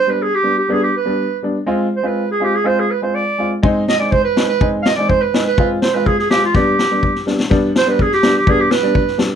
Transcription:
0.00 clarinet C5
0.07 upright piano G3 B3 D4, clarinet B4
0.22 clarinet G#4
0.35 clarinet G4
0.43 upright piano G3 B3 D4
0.58 clarinet G4
0.69 upright piano G3 B3 D4, clarinet G#4
0.83 clarinet G4
0.97 clarinet B4
1.05 upright piano G3 B3 D4
1.42 upright piano G3 B3 D4
1.66 upright piano G#3 C4 F4
1.96 clarinet C5
2.03 upright piano G#3 C4 F4, clarinet B4
2.31 clarinet G#4
2.40 upright piano G#3 C4 F4, clarinet G4
2.54 clarinet G#4
2.64 upright piano G#3 C4 F4, clarinet C5
2.80 clarinet G#4
2.91 clarinet B4
3.02 upright piano G#3 C4 F4, clarinet C5
3.15 clarinet D5
3.38 upright piano G#3 C4 F4
3.63 upright piano G#3 C4 D#4, kick
3.88 clarinet D#5, snare
3.99 upright piano G#3 C4 D#4, clarinet D5
4.11 clarinet C5, kick
4.24 clarinet B4
4.36 upright piano G#3 C4 D#4, snare
4.48 clarinet B4
4.61 upright piano G#3 C4 D#4, kick
4.82 clarinet D#5 F5, snare
4.96 upright piano G#3 C4 D#4, clarinet D5, snare
5.09 clarinet C5, kick
5.22 clarinet B4
5.34 upright piano G#3 C4 D#4, snare
5.46 clarinet B4
5.58 upright piano G#3 C4 F4, kick
5.82 clarinet C5, snare
5.94 upright piano G#3 C4 F4, clarinet B4
6.06 clarinet G#4, kick
6.19 clarinet G#4, snare
6.30 upright piano G#3 C4 F4, clarinet G4, snare
6.45 clarinet F4
6.55 upright piano G3 B3 D4, clarinet G4, kick, snare
6.79 snare
6.91 upright piano G3 B3 D4
7.03 kick
7.15 snare
7.26 upright piano G3 B3 D4, snare
7.40 snare
7.50 upright piano G3 B3 D4, kick, snare
7.76 clarinet C5, snare
7.86 upright piano G3 B3 D4, clarinet B4
7.99 clarinet G#4, kick
8.12 clarinet G4, snare
8.23 upright piano G3 B3 D4, snare
8.37 clarinet G4
8.47 upright piano G3 B3 D4, clarinet G#4, kick
8.60 clarinet G4
8.71 clarinet B4, snare
8.82 upright piano G3 B3 D4, snare
8.95 kick
9.08 snare
9.18 upright piano G3 B3 D4, snare

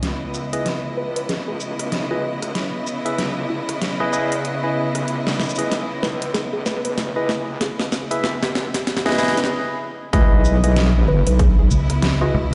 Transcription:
0.03 wobble bass C#2, string section C#3 B3 E4 D#5, snare, closed hi-hat
0.21 wobble bass C#2
0.34 shaker
0.53 tine electric piano E4 G#4 B4 D#5, closed hi-hat
0.66 snare, closed hi-hat
0.84 wobble bass C#2
0.97 synth pluck B4
1.16 synth pluck B4, closed hi-hat
1.29 synth pluck G#4, snare, closed hi-hat
1.48 wobble bass C#2, synth pluck G#4
1.60 shaker
1.79 cross-stick, closed hi-hat
1.91 wobble bass C2, snare, closed hi-hat
2.11 wobble bass C#2, tine electric piano E4 G#4 B4 D#5, synth pluck F#4
2.42 wobble bass C#2, cross-stick, closed hi-hat
2.55 snare, closed hi-hat
2.87 shaker
3.05 tine electric piano E4 G#4 B4 E5, closed hi-hat
3.18 wobble bass C#2, snare, closed hi-hat
3.50 wobble bass C#2, synth pluck E4
3.69 cross-stick, closed hi-hat
3.82 snare, closed hi-hat
4.00 wobble bass E2, tine electric piano E4 G#4 B4 D#5, cross-stick
4.13 tine electric piano E4 G#4 B4 D#5, shaker
4.32 closed hi-hat
4.45 closed hi-hat
4.63 tine electric piano E4 G#4 B4 D#5
4.95 wobble bass B1, cross-stick, closed hi-hat
5.08 wobble bass C#2, closed hi-hat
5.27 wobble bass C#2, snare
5.40 snare, shaker
5.43 shaker
5.46 shaker
5.49 shaker
5.55 tine electric piano E4 G#4 B4 D#5, closed hi-hat, shaker
5.72 snare, closed hi-hat
5.90 wobble bass C#2
6.02 synth pluck B4, snare
6.21 synth pluck B4, closed hi-hat
6.34 synth pluck G#4, snare, closed hi-hat
6.53 wobble bass C#2, synth pluck G#4
6.66 synth pluck B4, snare, shaker
6.85 synth pluck B4, closed hi-hat
6.98 snare, closed hi-hat
7.16 wobble bass C#2, tine electric piano E4 G#4 B4 D#5, synth pluck B4
7.29 snare
7.48 wobble bass C#2
7.61 synth pluck G#4, snare, closed hi-hat
7.79 synth pluck G#4, snare
7.92 snare, shaker
8.11 tine electric piano E4 G#4 B4 E5, closed hi-hat
8.24 wobble bass C#2, snare
8.43 snare
8.55 wobble bass C#2, snare
8.74 snare, closed hi-hat
8.87 snare, closed hi-hat
8.97 snare
9.06 tine electric piano E4 G#4 B4 D#5, snare
9.09 snare
9.12 snare
9.15 tine electric piano E4 G#4 B4 D#5, snare
9.18 snare, shaker
9.23 snare
9.28 snare
9.33 snare
9.37 wobble bass E2, snare, closed hi-hat
9.40 snare
9.44 snare
9.47 snare
10.13 wobble bass C#2, string section C#3 B3 E4 D#5, tine electric piano E4 G#4 B4 D#5, kick, closed hi-hat
10.32 wobble bass B1
10.45 shaker
10.64 tine electric piano E4 G#4 B4 D#5, closed hi-hat
10.76 snare, closed hi-hat
11.08 synth pluck B4
11.27 wobble bass B1, synth pluck B4, closed hi-hat
11.39 synth pluck G#4, kick, closed hi-hat
11.59 synth pluck G#4
11.71 fingered electric bass C#2, shaker
11.90 cross-stick, closed hi-hat
12.02 snare, closed hi-hat
12.21 tine electric piano E4 G#4 B4 D#5, synth pluck F#4
12.34 fingered electric bass C#2

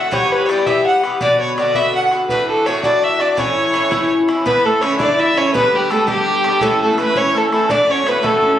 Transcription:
Already playing: bouzouki D3 A3 F#4, fiddle F#5, flute F#5
0.11 bouzouki G2 E3 B3 G4, fiddle C#5, flute C#5, bodhran
0.32 fiddle B4
0.45 bouzouki G2, fiddle C#5, flute D5
0.49 bouzouki E3 B3 G4, fiddle D5, bodhran
0.66 bouzouki G2 E3 B3 G4, fiddle E5, flute E5, bodhran
0.77 bodhran
0.85 flute F#5, fiddle F#5
1.04 bouzouki E3 B3 G4, bodhran
1.21 bouzouki B2 D3 B3 F#4, fiddle D5, flute D5, bodhran
1.40 fiddle C#5, flute C#5
1.58 bouzouki B2 D3 B3 F#4, fiddle D5, flute D5, bodhran
1.75 bouzouki B2 D3 B3 F#4, fiddle E5, flute E5, bodhran
1.95 fiddle F#5, flute F#5
2.11 bouzouki D3 B3 F#4, bodhran
2.29 bouzouki A2 E3 D4 F#4, flute B4, fiddle B4, bodhran
2.49 fiddle A4
2.66 bouzouki A2 E3 D4 F#4, fiddle C#5, flute C#5, bodhran
2.83 bouzouki A2 E3 D4 F#4, flute D5, fiddle D5, bodhran
2.94 bodhran
3.03 flute E5, fiddle E5
3.19 bouzouki E3 D4 F#4, flute D5, fiddle D5, bodhran
3.37 bouzouki A2 E3 C#4 E4, flute C#5, fiddle C#5, bodhran
3.74 bouzouki A2 E3 C#4 E4, bodhran
3.91 bouzouki A2 E3 C#4 E4, bodhran
4.01 bodhran
4.28 bouzouki E3 C#4 E4, bodhran
4.45 bouzouki A2 D3 A3 E4, viola B3, flute B4, fiddle B4, bodhran
4.65 viola A3, fiddle A4, flute A4
4.81 bouzouki A2 D3 A3 E4, viola C#4, fiddle C#5, flute C#5, bodhran
4.99 bouzouki A2 D3 A3 E4, viola D4, fiddle D5, flute D5, bodhran
5.09 bodhran
5.19 viola E4, fiddle E5
5.36 bouzouki D3 A3 E4, viola C#4, flute C#5, fiddle C#5, bodhran
5.54 bouzouki G2 D3 B3 D4, viola B3, flute B4, fiddle B4, bodhran
5.73 viola G3, fiddle G4
5.90 bouzouki G2 D3 B3 D4, viola A3, flute A4, fiddle A4, bodhran
6.07 bouzouki G2 D3 B3 D4, viola G3, flute G4, fiddle G4, bodhran
6.17 bodhran
6.44 bouzouki D3 B3 D4, bodhran
6.61 bouzouki A2 E3 C#4 E4, viola A3, flute A4, fiddle A4, bodhran
6.80 viola A3, flute A4, fiddle A4
6.92 viola B3
6.98 bouzouki A2 E3 C#4 E4, flute B4, fiddle B4, bodhran
7.04 viola A3
7.14 bouzouki A2 E3 C#4 E4, viola C#4, flute C#5, fiddle C#5, bodhran
7.26 bodhran
7.35 viola A3, flute A4, fiddle A4
7.50 viola A3, bouzouki C#4 E4, flute A4, fiddle A4, bodhran
7.55 bouzouki E3
7.69 bouzouki A2 D3 A3 F#4, viola D4, flute D5, fiddle D5, bodhran
7.89 viola C#4, flute C#5, fiddle C#5
8.06 bouzouki A2 D3 A3 F#4, viola B3, fiddle B4, bodhran
8.23 bouzouki A2 D3 A3 F#4, viola A3, flute A4, fiddle A4, bodhran
8.34 bodhran
8.44 viola C#4

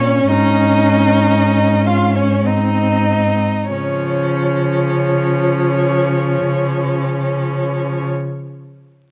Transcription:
Already playing: cello A#2, violin C#4 C#5, viola C#4
0.31 cello G#2, violin D#4 D#5
1.87 violin F4 F5
2.15 violin C#4 C#5
2.46 viola C4, violin D#4 D#5
3.71 cello C#3, viola F3, violin C#4 C#5

